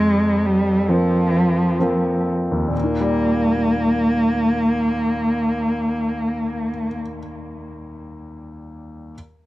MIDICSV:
0, 0, Header, 1, 3, 480
1, 0, Start_track
1, 0, Key_signature, -3, "major"
1, 0, Tempo, 900901
1, 959, Tempo, 949367
1, 1439, Time_signature, 4, 2, 24, 8
1, 1439, Tempo, 969305
1, 4763, End_track
2, 0, Start_track
2, 0, Title_t, "Cello"
2, 0, Program_c, 0, 42
2, 0, Note_on_c, 0, 56, 74
2, 243, Note_on_c, 0, 55, 65
2, 251, Note_off_c, 0, 56, 0
2, 478, Note_on_c, 0, 53, 64
2, 486, Note_off_c, 0, 55, 0
2, 1200, Note_off_c, 0, 53, 0
2, 1447, Note_on_c, 0, 58, 61
2, 3516, Note_off_c, 0, 58, 0
2, 4763, End_track
3, 0, Start_track
3, 0, Title_t, "Grand piano"
3, 0, Program_c, 1, 0
3, 0, Control_c, 1, 64, 127
3, 0, Note_on_c, 1, 41, 48
3, 473, Note_on_c, 1, 53, 34
3, 474, Note_on_c, 1, 58, 31
3, 476, Note_on_c, 1, 60, 35
3, 945, Note_off_c, 1, 53, 0
3, 946, Note_off_c, 1, 58, 0
3, 947, Note_off_c, 1, 60, 0
3, 958, Note_on_c, 1, 53, 32
3, 961, Note_on_c, 1, 58, 30
3, 965, Note_on_c, 1, 60, 35
3, 1321, Note_on_c, 1, 39, 34
3, 1403, Note_on_c, 1, 46, 32
3, 1422, Note_off_c, 1, 41, 0
3, 1425, Note_off_c, 1, 53, 0
3, 1426, Note_off_c, 1, 58, 0
3, 1428, Note_off_c, 1, 60, 0
3, 1445, Control_c, 1, 64, 0
3, 1483, Note_on_c, 1, 51, 33
3, 1528, Control_c, 1, 64, 127
3, 1564, Note_on_c, 1, 55, 39
3, 3393, Note_off_c, 1, 39, 0
3, 3473, Note_off_c, 1, 46, 0
3, 3552, Note_off_c, 1, 51, 0
3, 3634, Note_off_c, 1, 55, 0
3, 4606, Control_c, 1, 64, 0
3, 4763, End_track
0, 0, End_of_file